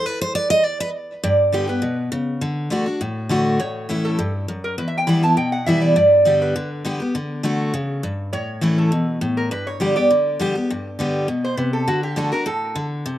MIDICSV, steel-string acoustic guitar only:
0, 0, Header, 1, 2, 480
1, 0, Start_track
1, 0, Tempo, 295276
1, 109, Time_signature, 4, 2, 24, 8
1, 21429, End_track
2, 0, Start_track
2, 0, Title_t, "Steel-string acoustic guitar"
2, 0, Program_c, 0, 25
2, 95, Note_on_c, 0, 71, 88
2, 343, Note_off_c, 0, 71, 0
2, 349, Note_on_c, 0, 72, 94
2, 562, Note_off_c, 0, 72, 0
2, 569, Note_on_c, 0, 74, 89
2, 809, Note_off_c, 0, 74, 0
2, 816, Note_on_c, 0, 75, 110
2, 1051, Note_off_c, 0, 75, 0
2, 1051, Note_on_c, 0, 74, 96
2, 1300, Note_off_c, 0, 74, 0
2, 1307, Note_on_c, 0, 71, 91
2, 1446, Note_off_c, 0, 71, 0
2, 2008, Note_on_c, 0, 43, 91
2, 2478, Note_on_c, 0, 50, 76
2, 2492, Note_on_c, 0, 55, 88
2, 2500, Note_on_c, 0, 59, 80
2, 2506, Note_on_c, 0, 67, 94
2, 2701, Note_off_c, 0, 67, 0
2, 2721, Note_on_c, 0, 67, 56
2, 2730, Note_off_c, 0, 50, 0
2, 2735, Note_off_c, 0, 59, 0
2, 2737, Note_off_c, 0, 55, 0
2, 2754, Note_on_c, 0, 59, 53
2, 2927, Note_off_c, 0, 43, 0
2, 2955, Note_off_c, 0, 67, 0
2, 2956, Note_on_c, 0, 47, 89
2, 2971, Note_off_c, 0, 59, 0
2, 3424, Note_off_c, 0, 47, 0
2, 3442, Note_on_c, 0, 49, 98
2, 3906, Note_off_c, 0, 49, 0
2, 3924, Note_on_c, 0, 50, 89
2, 4374, Note_off_c, 0, 50, 0
2, 4394, Note_on_c, 0, 50, 90
2, 4405, Note_on_c, 0, 57, 88
2, 4418, Note_on_c, 0, 62, 92
2, 4428, Note_on_c, 0, 66, 94
2, 4628, Note_off_c, 0, 66, 0
2, 4647, Note_off_c, 0, 50, 0
2, 4647, Note_on_c, 0, 66, 58
2, 4652, Note_off_c, 0, 57, 0
2, 4659, Note_off_c, 0, 62, 0
2, 4677, Note_on_c, 0, 62, 49
2, 4876, Note_off_c, 0, 66, 0
2, 4889, Note_on_c, 0, 45, 87
2, 4891, Note_off_c, 0, 62, 0
2, 5354, Note_on_c, 0, 50, 93
2, 5368, Note_on_c, 0, 57, 89
2, 5380, Note_on_c, 0, 62, 93
2, 5387, Note_on_c, 0, 66, 105
2, 5805, Note_off_c, 0, 45, 0
2, 5821, Note_off_c, 0, 50, 0
2, 5828, Note_off_c, 0, 57, 0
2, 5834, Note_off_c, 0, 62, 0
2, 5838, Note_off_c, 0, 66, 0
2, 5845, Note_on_c, 0, 45, 87
2, 6321, Note_on_c, 0, 52, 88
2, 6330, Note_on_c, 0, 57, 75
2, 6341, Note_on_c, 0, 61, 87
2, 6351, Note_on_c, 0, 64, 92
2, 6763, Note_off_c, 0, 45, 0
2, 6784, Note_off_c, 0, 52, 0
2, 6789, Note_off_c, 0, 57, 0
2, 6794, Note_off_c, 0, 61, 0
2, 6799, Note_off_c, 0, 64, 0
2, 6806, Note_on_c, 0, 43, 88
2, 7267, Note_off_c, 0, 43, 0
2, 7288, Note_on_c, 0, 42, 93
2, 7748, Note_off_c, 0, 42, 0
2, 7770, Note_on_c, 0, 40, 88
2, 8241, Note_on_c, 0, 52, 84
2, 8250, Note_on_c, 0, 55, 86
2, 8264, Note_on_c, 0, 59, 83
2, 8275, Note_on_c, 0, 64, 89
2, 8476, Note_off_c, 0, 64, 0
2, 8489, Note_off_c, 0, 52, 0
2, 8493, Note_off_c, 0, 55, 0
2, 8496, Note_on_c, 0, 64, 60
2, 8500, Note_off_c, 0, 59, 0
2, 8528, Note_on_c, 0, 59, 51
2, 8685, Note_off_c, 0, 40, 0
2, 8719, Note_off_c, 0, 64, 0
2, 8728, Note_on_c, 0, 47, 81
2, 8735, Note_off_c, 0, 59, 0
2, 9208, Note_on_c, 0, 52, 79
2, 9225, Note_on_c, 0, 55, 96
2, 9233, Note_on_c, 0, 59, 98
2, 9242, Note_on_c, 0, 64, 104
2, 9645, Note_off_c, 0, 47, 0
2, 9668, Note_off_c, 0, 52, 0
2, 9676, Note_off_c, 0, 55, 0
2, 9680, Note_off_c, 0, 59, 0
2, 9685, Note_off_c, 0, 64, 0
2, 9687, Note_on_c, 0, 43, 83
2, 10164, Note_on_c, 0, 50, 88
2, 10171, Note_on_c, 0, 55, 89
2, 10181, Note_on_c, 0, 59, 84
2, 10194, Note_on_c, 0, 67, 93
2, 10605, Note_off_c, 0, 43, 0
2, 10626, Note_off_c, 0, 50, 0
2, 10630, Note_off_c, 0, 55, 0
2, 10635, Note_off_c, 0, 59, 0
2, 10641, Note_off_c, 0, 67, 0
2, 10658, Note_on_c, 0, 50, 94
2, 11109, Note_off_c, 0, 50, 0
2, 11128, Note_on_c, 0, 50, 96
2, 11142, Note_on_c, 0, 55, 95
2, 11146, Note_on_c, 0, 59, 96
2, 11160, Note_on_c, 0, 67, 96
2, 11356, Note_off_c, 0, 67, 0
2, 11373, Note_off_c, 0, 50, 0
2, 11375, Note_on_c, 0, 67, 59
2, 11380, Note_off_c, 0, 55, 0
2, 11383, Note_off_c, 0, 59, 0
2, 11407, Note_on_c, 0, 59, 49
2, 11600, Note_off_c, 0, 67, 0
2, 11616, Note_off_c, 0, 59, 0
2, 11620, Note_on_c, 0, 50, 85
2, 12064, Note_off_c, 0, 50, 0
2, 12084, Note_on_c, 0, 50, 86
2, 12090, Note_on_c, 0, 57, 88
2, 12100, Note_on_c, 0, 62, 84
2, 12113, Note_on_c, 0, 66, 97
2, 12548, Note_off_c, 0, 50, 0
2, 12551, Note_off_c, 0, 57, 0
2, 12556, Note_off_c, 0, 62, 0
2, 12562, Note_off_c, 0, 66, 0
2, 12576, Note_on_c, 0, 49, 85
2, 13034, Note_off_c, 0, 49, 0
2, 13058, Note_on_c, 0, 43, 91
2, 13516, Note_off_c, 0, 43, 0
2, 13543, Note_on_c, 0, 45, 89
2, 14002, Note_on_c, 0, 52, 77
2, 14012, Note_on_c, 0, 57, 85
2, 14025, Note_on_c, 0, 61, 88
2, 14036, Note_on_c, 0, 64, 91
2, 14456, Note_off_c, 0, 45, 0
2, 14469, Note_off_c, 0, 52, 0
2, 14473, Note_off_c, 0, 57, 0
2, 14480, Note_off_c, 0, 61, 0
2, 14486, Note_off_c, 0, 64, 0
2, 14498, Note_on_c, 0, 47, 86
2, 14957, Note_off_c, 0, 47, 0
2, 14976, Note_on_c, 0, 45, 91
2, 15436, Note_off_c, 0, 45, 0
2, 15462, Note_on_c, 0, 43, 93
2, 15929, Note_on_c, 0, 50, 82
2, 15940, Note_on_c, 0, 55, 89
2, 15948, Note_on_c, 0, 59, 86
2, 15957, Note_on_c, 0, 67, 90
2, 16168, Note_off_c, 0, 67, 0
2, 16178, Note_off_c, 0, 50, 0
2, 16183, Note_off_c, 0, 55, 0
2, 16187, Note_off_c, 0, 59, 0
2, 16187, Note_on_c, 0, 67, 66
2, 16218, Note_on_c, 0, 59, 52
2, 16377, Note_off_c, 0, 43, 0
2, 16410, Note_off_c, 0, 67, 0
2, 16425, Note_off_c, 0, 59, 0
2, 16427, Note_on_c, 0, 50, 86
2, 16878, Note_off_c, 0, 50, 0
2, 16898, Note_on_c, 0, 50, 96
2, 16910, Note_on_c, 0, 55, 83
2, 16919, Note_on_c, 0, 59, 90
2, 16930, Note_on_c, 0, 67, 107
2, 17136, Note_off_c, 0, 67, 0
2, 17143, Note_off_c, 0, 50, 0
2, 17149, Note_off_c, 0, 55, 0
2, 17153, Note_off_c, 0, 59, 0
2, 17155, Note_on_c, 0, 67, 54
2, 17190, Note_on_c, 0, 59, 48
2, 17375, Note_off_c, 0, 67, 0
2, 17392, Note_off_c, 0, 59, 0
2, 17402, Note_on_c, 0, 43, 88
2, 17862, Note_on_c, 0, 50, 81
2, 17878, Note_on_c, 0, 55, 87
2, 17892, Note_on_c, 0, 59, 86
2, 17894, Note_on_c, 0, 67, 86
2, 18308, Note_off_c, 0, 43, 0
2, 18320, Note_off_c, 0, 50, 0
2, 18329, Note_off_c, 0, 55, 0
2, 18336, Note_off_c, 0, 59, 0
2, 18337, Note_off_c, 0, 67, 0
2, 18338, Note_on_c, 0, 47, 84
2, 18799, Note_off_c, 0, 47, 0
2, 18816, Note_on_c, 0, 48, 89
2, 19278, Note_off_c, 0, 48, 0
2, 19305, Note_on_c, 0, 50, 88
2, 19750, Note_off_c, 0, 50, 0
2, 19770, Note_on_c, 0, 50, 92
2, 19785, Note_on_c, 0, 57, 91
2, 19794, Note_on_c, 0, 62, 91
2, 19803, Note_on_c, 0, 66, 81
2, 20004, Note_off_c, 0, 66, 0
2, 20019, Note_off_c, 0, 50, 0
2, 20023, Note_on_c, 0, 66, 59
2, 20027, Note_off_c, 0, 57, 0
2, 20031, Note_off_c, 0, 62, 0
2, 20056, Note_on_c, 0, 62, 52
2, 20249, Note_off_c, 0, 66, 0
2, 20251, Note_on_c, 0, 45, 90
2, 20266, Note_off_c, 0, 62, 0
2, 20716, Note_off_c, 0, 45, 0
2, 20734, Note_on_c, 0, 50, 94
2, 21198, Note_off_c, 0, 50, 0
2, 21224, Note_on_c, 0, 48, 88
2, 21429, Note_off_c, 0, 48, 0
2, 21429, End_track
0, 0, End_of_file